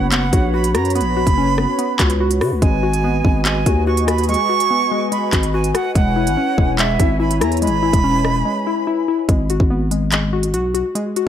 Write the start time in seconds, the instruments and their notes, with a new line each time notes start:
Already playing: 808-style bass F#1, synth pluck B3 C#4 F#4, analog synth pad F#4 B4 C#5 B5
0.12 synth pluck B3, flute F#5, clap, closed hi-hat
0.33 808-style bass A#1, synth pluck F#4, kick, closed hi-hat
0.54 synth pluck F#4, flute B5
0.64 closed hi-hat
0.74 808-style bass F#2, synth pluck F#4, flute A#5, cross-stick, closed hi-hat
0.85 closed hi-hat
0.90 closed hi-hat
0.95 synth pluck B3, flute B5, closed hi-hat
1.01 808-style bass A#1, closed hi-hat
1.17 synth pluck F#4
1.27 808-style bass F#1, kick, closed hi-hat
1.38 synth pluck C#4
1.58 synth pluck B3, cross-stick
1.78 synth pluck B3, closed hi-hat
1.99 808-style bass C#2, synth pluck F#4, kick, clap, closed hi-hat
2.10 closed hi-hat
2.20 synth pluck F#4
2.31 closed hi-hat
2.41 808-style bass C#3, synth pluck F#4, cross-stick, open hi-hat
2.52 808-style bass C#2
2.62 808-style bass G#1, synth pluck G#3, analog synth pad D#5 G#5, flute G#5, kick, closed hi-hat
2.83 synth pluck F#4
2.93 closed hi-hat
3.04 synth pluck B3
3.24 808-style bass G#1, synth pluck G#3, kick
3.45 synth pluck G#3, flute G#5, clap, closed hi-hat
3.66 808-style bass D#2, synth pluck F#4, kick, closed hi-hat
3.87 synth pluck F#4, flute C#6
3.97 closed hi-hat
4.07 synth pluck F#4, flute B5, cross-stick, closed hi-hat
4.18 closed hi-hat
4.24 closed hi-hat
4.29 synth pluck G#3, flute C#6, closed hi-hat
4.34 closed hi-hat
4.49 synth pluck F#4
4.60 closed hi-hat
4.71 synth pluck B3
4.91 synth pluck G#3
5.12 synth pluck G#3, flute B5, closed hi-hat
5.33 808-style bass G#1, synth pluck F#4, kick, clap, closed hi-hat
5.43 closed hi-hat
5.54 synth pluck F#4, flute G#5
5.64 closed hi-hat
5.74 synth pluck F#4, flute F#5, cross-stick, closed hi-hat
5.95 808-style bass E1, synth pluck G#3, analog synth pad E4 C#5 G#5, flute F#5, kick, closed hi-hat
6.16 synth pluck E4
6.27 808-style bass G#1, closed hi-hat
6.37 synth pluck C#4
6.58 808-style bass E1, synth pluck G#3, kick
6.79 synth pluck G#3, flute E5, clap, closed hi-hat
7.00 808-style bass G#1, synth pluck E4, kick, closed hi-hat
7.20 synth pluck E4, flute B5
7.31 closed hi-hat
7.41 808-style bass E2, synth pluck E4, flute A#5, cross-stick, closed hi-hat
7.52 closed hi-hat
7.57 closed hi-hat
7.62 synth pluck G#3, flute B5, closed hi-hat
7.67 808-style bass G#1, closed hi-hat
7.83 synth pluck E4
7.93 808-style bass E1, kick, closed hi-hat
8.04 synth pluck C#4
8.24 synth pluck G#3, cross-stick
8.45 synth pluck G#3
8.67 synth pluck E4
8.87 synth pluck E4
9.08 synth pluck E4
9.29 808-style bass G#1, synth pluck G#3, kick, closed hi-hat
9.50 synth pluck F#4, closed hi-hat
9.60 808-style bass G#1, kick
9.70 synth pluck B3
9.91 synth pluck G#3, closed hi-hat
10.12 synth pluck G#3, clap, closed hi-hat
10.33 synth pluck F#4
10.43 closed hi-hat
10.54 808-style bass B1, synth pluck F#4, closed hi-hat
10.74 synth pluck F#4, closed hi-hat
10.95 synth pluck G#3, closed hi-hat
11.16 synth pluck F#4, closed hi-hat